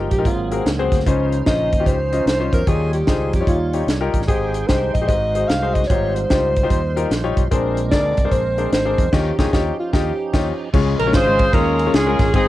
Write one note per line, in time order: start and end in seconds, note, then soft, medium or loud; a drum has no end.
0.00 0.24 F3 medium
0.00 0.24 G#3 medium
0.00 0.24 D#4 medium
0.00 0.27 G4 medium
0.11 0.24 A#1 medium
0.11 0.25 G4 medium
0.11 kick medium
0.11 closed hi-hat medium
0.18 0.26 D#4 medium
0.18 0.26 F4 medium
0.18 0.26 G4 medium
0.18 0.26 A#4 medium
0.25 0.60 G#1 medium
0.25 0.88 G#2 medium
0.25 1.05 F#3 medium
0.25 1.05 A#3 medium
0.25 1.05 C4 medium
0.25 0.64 F4 medium
0.25 1.05 G#4 medium
0.25 kick medium
0.25 closed hi-hat medium
0.51 0.63 C4 medium
0.51 0.63 F#4 medium
0.51 0.63 G#4 medium
0.51 0.63 A#4 medium
0.51 closed hi-hat medium
0.65 0.88 C#2 loud
0.65 snare loud
0.65 closed hi-hat medium
0.79 0.96 C4 medium
0.79 0.97 F#4 medium
0.79 0.97 G#4 medium
0.79 0.97 C5 loud
0.92 1.04 D2 medium
0.92 kick medium
0.92 snare soft
0.92 closed hi-hat medium
1.00 snare soft
1.06 1.40 C#2 loud
1.06 1.69 C#3 medium
1.06 2.64 F3 medium
1.06 2.64 C#4 medium
1.06 1.34 C#4 medium
1.06 2.64 D#4 medium
1.06 1.34 D#4 medium
1.06 1.34 F4 medium
1.06 1.13 A#4 medium
1.06 1.34 C5 medium
1.06 kick medium
1.06 closed hi-hat medium
1.11 2.67 C5 medium
1.32 closed hi-hat medium
1.46 1.69 A#1 medium
1.46 1.68 C#4 medium
1.46 1.68 D#4 medium
1.46 1.68 F4 medium
1.46 1.68 C5 medium
1.46 1.88 D#5 loud
1.46 kick medium
1.46 snare loud
1.46 closed hi-hat medium
1.72 1.85 D#2 medium
1.72 kick medium
1.72 closed hi-hat medium
1.80 1.95 C#4 medium
1.80 1.95 D#4 medium
1.80 1.95 F4 medium
1.80 1.95 G4 medium
1.86 2.21 C#2 medium
1.86 2.27 C5 loud
1.86 kick medium
1.86 closed hi-hat medium
2.12 2.24 C#4 medium
2.12 2.25 D#4 medium
2.12 2.25 F4 medium
2.12 2.25 D#5 medium
2.12 closed hi-hat medium
2.26 2.48 C2 medium
2.26 2.51 C5 loud
2.26 snare medium
2.26 closed hi-hat medium
2.40 2.58 C#4 medium
2.40 2.58 D#4 medium
2.40 2.58 F4 medium
2.40 2.58 C5 medium
2.53 2.65 E2 loud
2.53 2.70 A#4 medium
2.53 kick medium
2.53 closed hi-hat medium
2.66 3.02 D#2 loud
2.66 3.30 D#3 medium
2.66 2.74 F#3 soft
2.66 4.25 D#4 medium
2.66 2.95 D#4 medium
2.66 4.25 F4 medium
2.66 2.95 F4 medium
2.66 2.94 G4 medium
2.66 2.93 G#4 medium
2.66 4.25 C#5 medium
2.66 2.95 C#5 medium
2.66 kick medium
2.66 closed hi-hat medium
2.72 4.28 G3 medium
2.93 3.10 G4 medium
2.93 closed hi-hat medium
3.07 3.30 C#2 medium
3.07 3.29 D#4 medium
3.07 3.29 F4 medium
3.07 3.29 G4 medium
3.07 3.34 G#4 medium
3.07 3.29 C5 medium
3.07 kick medium
3.07 snare loud
3.07 closed hi-hat medium
3.33 3.46 F2 medium
3.33 3.48 G4 medium
3.33 kick medium
3.33 closed hi-hat medium
3.41 3.56 D#4 medium
3.41 3.56 F4 medium
3.41 3.56 G4 medium
3.41 3.56 C#5 medium
3.47 3.82 D#2 medium
3.47 3.86 F4 medium
3.47 kick medium
3.47 closed hi-hat medium
3.73 3.86 D#4 medium
3.73 3.86 F4 medium
3.73 3.86 G4 medium
3.73 3.86 C#5 medium
3.73 closed hi-hat medium
3.87 4.10 C2 medium
3.87 snare loud
3.87 closed hi-hat medium
4.01 4.19 D#4 medium
4.01 4.19 F4 medium
4.01 4.19 G4 medium
4.01 4.19 A#4 medium
4.13 4.26 A1 medium
4.13 kick medium
4.13 closed hi-hat medium
4.22 snare soft
4.28 4.63 G#1 loud
4.28 4.91 G#2 medium
4.28 5.07 G#3 medium
4.28 5.07 D#4 soft
4.28 4.55 D#4 medium
4.28 4.56 G4 medium
4.28 4.56 G#4 medium
4.28 4.69 G#4 medium
4.28 5.07 C5 medium
4.28 4.56 C5 medium
4.28 5.07 G5 medium
4.28 kick loud
4.28 closed hi-hat medium
4.54 closed hi-hat medium
4.68 4.91 C2 medium
4.68 4.90 D#4 medium
4.68 4.90 G4 medium
4.68 4.90 G#4 medium
4.68 4.93 C5 medium
4.68 4.90 C5 medium
4.68 kick medium
4.68 snare loud
4.68 closed hi-hat medium
4.94 5.07 A#1 medium
4.94 5.07 D#5 medium
4.94 kick medium
4.94 closed hi-hat medium
5.02 5.09 D#4 medium
5.02 5.09 G4 medium
5.02 5.09 G#4 medium
5.02 5.09 C5 medium
5.08 5.43 G#1 loud
5.08 5.72 G#2 medium
5.08 5.88 G#3 medium
5.08 5.88 D#4 medium
5.08 5.88 F#4 medium
5.08 5.15 B4 medium
5.08 5.49 D#5 loud
5.08 kick loud
5.08 closed hi-hat medium
5.14 5.89 C5 medium
5.35 5.47 D#4 medium
5.35 5.47 F#4 medium
5.35 5.47 G#4 medium
5.35 5.47 C5 medium
5.35 closed hi-hat medium
5.48 5.84 C2 medium
5.48 5.76 F5 loud
5.48 snare loud
5.48 closed hi-hat medium
5.62 5.80 D#4 medium
5.62 5.80 F#4 medium
5.62 5.80 G#4 medium
5.62 5.80 C5 medium
5.74 5.89 D#5 medium
5.74 kick medium
5.74 closed hi-hat medium
5.83 snare soft
5.87 6.24 G#1 loud
5.87 6.52 G#2 medium
5.87 7.48 G3 medium
5.87 7.48 D#4 medium
5.87 6.17 D#4 medium
5.87 7.48 F4 medium
5.87 6.17 F4 medium
5.87 6.17 G4 medium
5.87 7.48 C5 medium
5.87 6.17 C5 medium
5.87 6.16 C#5 loud
5.87 kick loud
5.87 closed hi-hat medium
6.14 7.36 C5 medium
6.14 closed hi-hat medium
6.30 6.65 C#2 medium
6.30 6.51 D#4 medium
6.30 6.51 F4 medium
6.30 6.51 G4 medium
6.30 6.51 C5 medium
6.30 kick medium
6.30 snare loud
6.30 closed hi-hat medium
6.56 kick medium
6.56 closed hi-hat medium
6.63 6.79 D#4 medium
6.63 6.79 F4 medium
6.63 6.79 G4 medium
6.63 6.79 C5 medium
6.70 7.04 D#2 medium
6.70 kick medium
6.70 closed hi-hat medium
6.96 7.08 D#4 medium
6.96 7.08 F4 medium
6.96 7.08 G4 medium
6.96 7.08 A#4 medium
6.96 closed hi-hat medium
7.10 7.33 A#1 medium
7.10 snare medium
7.10 closed hi-hat medium
7.24 7.41 D#4 medium
7.24 7.41 F4 medium
7.24 7.41 G4 medium
7.24 7.41 C#5 loud
7.37 7.49 B1 medium
7.37 kick medium
7.37 closed hi-hat medium
7.51 7.92 A#1 loud
7.51 8.13 A#2 medium
7.51 9.09 G#3 medium
7.51 9.09 C4 medium
7.51 7.78 D4 medium
7.51 9.10 D4 medium
7.51 7.78 G#4 medium
7.51 7.78 A#4 medium
7.51 9.09 A#4 medium
7.51 7.78 C5 medium
7.51 kick loud
7.51 closed hi-hat medium
7.77 closed hi-hat medium
7.91 8.14 D2 medium
7.91 8.13 D4 medium
7.91 8.13 G#4 medium
7.91 8.13 A#4 medium
7.91 8.33 D5 loud
7.91 8.13 D5 medium
7.91 kick medium
7.91 snare loud
7.91 closed hi-hat medium
8.17 8.30 C2 medium
8.17 kick medium
8.17 closed hi-hat medium
8.25 8.40 D4 medium
8.25 8.40 G#4 medium
8.25 8.40 A#4 medium
8.25 8.40 C5 medium
8.31 8.66 A#1 medium
8.31 8.72 C5 loud
8.31 kick medium
8.31 closed hi-hat medium
8.58 8.70 D4 medium
8.58 8.70 G#4 medium
8.58 8.70 A#4 medium
8.58 8.70 C5 medium
8.58 closed hi-hat medium
8.72 8.94 G#1 medium
8.72 9.15 C5 loud
8.72 snare loud
8.72 closed hi-hat medium
8.85 9.03 D4 medium
8.85 9.03 G#4 medium
8.85 9.03 A#4 medium
8.85 9.03 C5 medium
8.98 9.10 E2 medium
8.98 kick medium
8.98 closed hi-hat medium
9.12 9.30 D#2 loud
9.12 9.30 D#3 medium
9.12 10.70 F3 medium
9.12 10.70 C#4 medium
9.12 10.70 D#4 medium
9.12 9.30 D#4 medium
9.12 9.30 F4 medium
9.12 10.70 G4 medium
9.12 9.30 G4 medium
9.12 9.39 G4 medium
9.12 9.30 C#5 medium
9.12 kick loud
9.12 snare loud
9.12 crash medium
9.38 9.48 D#2 medium
9.38 9.49 D#3 medium
9.38 9.49 D#4 medium
9.38 9.49 F4 medium
9.38 9.49 G4 medium
9.38 9.56 G#4 medium
9.38 9.48 C#5 medium
9.38 kick loud
9.38 snare loud
9.53 9.71 D#2 medium
9.53 9.71 D#4 medium
9.53 9.70 F4 medium
9.53 9.71 G4 loud
9.53 9.79 G4 medium
9.53 9.70 C#5 medium
9.53 kick medium
9.53 snare medium
9.80 9.93 F4 medium
9.93 10.11 D#2 loud
9.93 10.11 D#4 medium
9.93 10.10 F4 medium
9.93 10.11 G4 medium
9.93 10.31 G4 medium
9.93 10.11 D#5 medium
9.93 kick loud
9.93 snare loud
10.33 10.51 D#2 medium
10.33 10.51 D#4 medium
10.33 10.51 F4 medium
10.33 10.51 G4 medium
10.33 10.51 C#5 medium
10.33 kick medium
10.33 snare loud
10.33 crash medium
10.73 10.95 C#2 loud
10.73 11.36 C#3 medium
10.73 12.30 G#3 medium
10.73 10.95 G#3 medium
10.73 12.30 C#4 medium
10.73 10.95 C#4 medium
10.73 10.79 E4 medium
10.73 10.95 F4 medium
10.73 10.95 G#4 medium
10.73 10.95 C#5 loud
10.73 kick loud
10.73 crash loud
10.78 12.33 F4 medium
10.99 11.11 A#1 medium
10.99 11.13 A#4 medium
10.99 ride medium
11.07 11.15 G#3 medium
11.07 11.15 C#4 medium
11.07 11.15 F4 medium
11.07 11.15 G#4 medium
11.07 11.15 C#5 medium
11.13 11.48 G#1 medium
11.13 11.53 F4 medium
11.13 11.90 G#4 medium
11.13 11.54 C5 loud
11.13 kick medium
11.13 snare loud
11.13 ride medium
11.26 11.44 G#3 medium
11.26 11.44 C#4 medium
11.26 11.44 F4 medium
11.26 11.44 G#4 medium
11.26 11.44 D#5 medium
11.39 kick medium
11.39 ride medium
11.53 11.87 D#2 medium
11.53 11.75 G#3 medium
11.53 11.75 C#4 medium
11.53 11.93 C#4 medium
11.53 11.75 F4 medium
11.53 11.93 F4 medium
11.53 11.75 G#4 medium
11.53 11.94 A#4 loud
11.53 11.75 C#5 medium
11.53 kick loud
11.53 ride medium
11.79 ride medium
11.86 11.95 G#3 medium
11.86 11.95 C#4 medium
11.86 11.95 F4 medium
11.86 11.95 G#4 medium
11.86 11.95 C#5 medium
11.94 12.16 C#2 medium
11.94 12.31 C#4 medium
11.94 12.31 F4 medium
11.94 12.34 G#4 loud
11.94 snare loud
11.94 ride medium
12.07 12.24 G#3 medium
12.07 12.24 C#4 medium
12.07 12.24 F4 medium
12.07 12.24 G#4 medium
12.07 12.24 A#4 medium
12.19 12.32 A1 loud
12.19 kick medium
12.19 snare soft
12.19 ride medium
12.33 12.48 G#1 loud
12.33 12.48 G#2 medium
12.33 12.48 G#3 medium
12.33 12.48 C4 medium
12.33 12.48 D#4 medium
12.33 12.48 G#4 medium
12.33 12.48 C5 medium
12.33 kick loud
12.33 ride medium